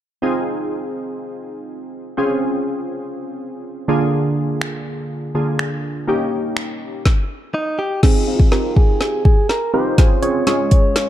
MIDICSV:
0, 0, Header, 1, 4, 480
1, 0, Start_track
1, 0, Key_signature, -4, "minor"
1, 0, Tempo, 487805
1, 222, Time_signature, 4, 2, 24, 8
1, 10915, End_track
2, 0, Start_track
2, 0, Title_t, "Clean electric guitar"
2, 0, Program_c, 0, 27
2, 7423, Note_on_c, 0, 63, 80
2, 7662, Note_on_c, 0, 67, 88
2, 7670, Note_off_c, 0, 63, 0
2, 7900, Note_off_c, 0, 67, 0
2, 7904, Note_on_c, 0, 68, 90
2, 8126, Note_off_c, 0, 68, 0
2, 8143, Note_on_c, 0, 65, 80
2, 8208, Note_off_c, 0, 65, 0
2, 8383, Note_on_c, 0, 70, 97
2, 8619, Note_off_c, 0, 70, 0
2, 8623, Note_on_c, 0, 68, 84
2, 8851, Note_off_c, 0, 68, 0
2, 8863, Note_on_c, 0, 68, 91
2, 9091, Note_off_c, 0, 68, 0
2, 9102, Note_on_c, 0, 68, 92
2, 9326, Note_off_c, 0, 68, 0
2, 9342, Note_on_c, 0, 70, 95
2, 9578, Note_off_c, 0, 70, 0
2, 9582, Note_on_c, 0, 72, 99
2, 10029, Note_off_c, 0, 72, 0
2, 10061, Note_on_c, 0, 73, 95
2, 10290, Note_off_c, 0, 73, 0
2, 10302, Note_on_c, 0, 73, 105
2, 10915, Note_off_c, 0, 73, 0
2, 10915, End_track
3, 0, Start_track
3, 0, Title_t, "Synth keys"
3, 0, Program_c, 1, 88
3, 218, Note_on_c, 1, 60, 67
3, 221, Note_on_c, 1, 63, 64
3, 224, Note_on_c, 1, 65, 64
3, 228, Note_on_c, 1, 68, 76
3, 2102, Note_off_c, 1, 60, 0
3, 2103, Note_off_c, 1, 63, 0
3, 2105, Note_off_c, 1, 65, 0
3, 2107, Note_off_c, 1, 68, 0
3, 2138, Note_on_c, 1, 60, 70
3, 2141, Note_on_c, 1, 61, 63
3, 2144, Note_on_c, 1, 65, 64
3, 2147, Note_on_c, 1, 68, 78
3, 3787, Note_off_c, 1, 60, 0
3, 3788, Note_off_c, 1, 61, 0
3, 3790, Note_off_c, 1, 65, 0
3, 3792, Note_off_c, 1, 68, 0
3, 3819, Note_on_c, 1, 50, 73
3, 3821, Note_on_c, 1, 58, 67
3, 3823, Note_on_c, 1, 62, 67
3, 3826, Note_on_c, 1, 65, 69
3, 3828, Note_on_c, 1, 68, 78
3, 5232, Note_off_c, 1, 50, 0
3, 5233, Note_off_c, 1, 58, 0
3, 5234, Note_off_c, 1, 62, 0
3, 5236, Note_off_c, 1, 65, 0
3, 5237, Note_off_c, 1, 68, 0
3, 5261, Note_on_c, 1, 50, 55
3, 5262, Note_on_c, 1, 58, 49
3, 5264, Note_on_c, 1, 62, 50
3, 5265, Note_on_c, 1, 65, 50
3, 5266, Note_on_c, 1, 68, 60
3, 5966, Note_off_c, 1, 58, 0
3, 5978, Note_on_c, 1, 58, 70
3, 5981, Note_on_c, 1, 61, 66
3, 5982, Note_off_c, 1, 50, 0
3, 5983, Note_off_c, 1, 62, 0
3, 5984, Note_off_c, 1, 65, 0
3, 5984, Note_off_c, 1, 68, 0
3, 5984, Note_on_c, 1, 63, 65
3, 5987, Note_on_c, 1, 67, 78
3, 6921, Note_off_c, 1, 58, 0
3, 6923, Note_off_c, 1, 61, 0
3, 6924, Note_off_c, 1, 63, 0
3, 6926, Note_off_c, 1, 67, 0
3, 7900, Note_on_c, 1, 60, 72
3, 7902, Note_on_c, 1, 63, 68
3, 7903, Note_on_c, 1, 65, 69
3, 7905, Note_on_c, 1, 68, 81
3, 8104, Note_off_c, 1, 60, 0
3, 8105, Note_off_c, 1, 63, 0
3, 8106, Note_off_c, 1, 65, 0
3, 8107, Note_off_c, 1, 68, 0
3, 8140, Note_on_c, 1, 60, 69
3, 8141, Note_on_c, 1, 63, 65
3, 8143, Note_on_c, 1, 65, 63
3, 8145, Note_on_c, 1, 68, 75
3, 8344, Note_off_c, 1, 60, 0
3, 8345, Note_off_c, 1, 63, 0
3, 8346, Note_off_c, 1, 65, 0
3, 8347, Note_off_c, 1, 68, 0
3, 8380, Note_on_c, 1, 60, 68
3, 8382, Note_on_c, 1, 63, 62
3, 8383, Note_on_c, 1, 65, 63
3, 8385, Note_on_c, 1, 67, 79
3, 9193, Note_off_c, 1, 60, 0
3, 9194, Note_off_c, 1, 63, 0
3, 9195, Note_off_c, 1, 65, 0
3, 9196, Note_off_c, 1, 67, 0
3, 9580, Note_on_c, 1, 60, 79
3, 9582, Note_on_c, 1, 63, 73
3, 9583, Note_on_c, 1, 65, 71
3, 9585, Note_on_c, 1, 67, 85
3, 9785, Note_off_c, 1, 60, 0
3, 9785, Note_off_c, 1, 63, 0
3, 9786, Note_off_c, 1, 65, 0
3, 9787, Note_off_c, 1, 67, 0
3, 9820, Note_on_c, 1, 60, 75
3, 9821, Note_on_c, 1, 61, 69
3, 9823, Note_on_c, 1, 65, 70
3, 9825, Note_on_c, 1, 68, 83
3, 10024, Note_off_c, 1, 60, 0
3, 10025, Note_off_c, 1, 61, 0
3, 10026, Note_off_c, 1, 65, 0
3, 10027, Note_off_c, 1, 68, 0
3, 10060, Note_on_c, 1, 60, 75
3, 10062, Note_on_c, 1, 61, 65
3, 10064, Note_on_c, 1, 65, 67
3, 10065, Note_on_c, 1, 68, 76
3, 10265, Note_off_c, 1, 60, 0
3, 10266, Note_off_c, 1, 61, 0
3, 10266, Note_off_c, 1, 65, 0
3, 10267, Note_off_c, 1, 68, 0
3, 10301, Note_on_c, 1, 56, 72
3, 10302, Note_on_c, 1, 61, 68
3, 10304, Note_on_c, 1, 65, 63
3, 10306, Note_on_c, 1, 68, 80
3, 10915, Note_off_c, 1, 56, 0
3, 10915, Note_off_c, 1, 61, 0
3, 10915, Note_off_c, 1, 65, 0
3, 10915, Note_off_c, 1, 68, 0
3, 10915, End_track
4, 0, Start_track
4, 0, Title_t, "Drums"
4, 4541, Note_on_c, 9, 26, 102
4, 4640, Note_off_c, 9, 26, 0
4, 5503, Note_on_c, 9, 26, 106
4, 5602, Note_off_c, 9, 26, 0
4, 6461, Note_on_c, 9, 26, 106
4, 6559, Note_off_c, 9, 26, 0
4, 6942, Note_on_c, 9, 36, 102
4, 6942, Note_on_c, 9, 38, 88
4, 7041, Note_off_c, 9, 36, 0
4, 7041, Note_off_c, 9, 38, 0
4, 7902, Note_on_c, 9, 36, 101
4, 7902, Note_on_c, 9, 38, 51
4, 7902, Note_on_c, 9, 49, 92
4, 8000, Note_off_c, 9, 36, 0
4, 8000, Note_off_c, 9, 38, 0
4, 8000, Note_off_c, 9, 49, 0
4, 8261, Note_on_c, 9, 36, 98
4, 8359, Note_off_c, 9, 36, 0
4, 8382, Note_on_c, 9, 38, 56
4, 8481, Note_off_c, 9, 38, 0
4, 8624, Note_on_c, 9, 36, 88
4, 8723, Note_off_c, 9, 36, 0
4, 8862, Note_on_c, 9, 38, 62
4, 8960, Note_off_c, 9, 38, 0
4, 9103, Note_on_c, 9, 36, 97
4, 9202, Note_off_c, 9, 36, 0
4, 9342, Note_on_c, 9, 38, 66
4, 9441, Note_off_c, 9, 38, 0
4, 9822, Note_on_c, 9, 36, 103
4, 9822, Note_on_c, 9, 38, 66
4, 9822, Note_on_c, 9, 42, 96
4, 9920, Note_off_c, 9, 36, 0
4, 9921, Note_off_c, 9, 38, 0
4, 9921, Note_off_c, 9, 42, 0
4, 10062, Note_on_c, 9, 42, 75
4, 10160, Note_off_c, 9, 42, 0
4, 10301, Note_on_c, 9, 42, 92
4, 10303, Note_on_c, 9, 38, 72
4, 10400, Note_off_c, 9, 42, 0
4, 10401, Note_off_c, 9, 38, 0
4, 10541, Note_on_c, 9, 42, 84
4, 10544, Note_on_c, 9, 36, 89
4, 10640, Note_off_c, 9, 42, 0
4, 10643, Note_off_c, 9, 36, 0
4, 10783, Note_on_c, 9, 38, 82
4, 10785, Note_on_c, 9, 42, 90
4, 10881, Note_off_c, 9, 38, 0
4, 10883, Note_off_c, 9, 42, 0
4, 10915, End_track
0, 0, End_of_file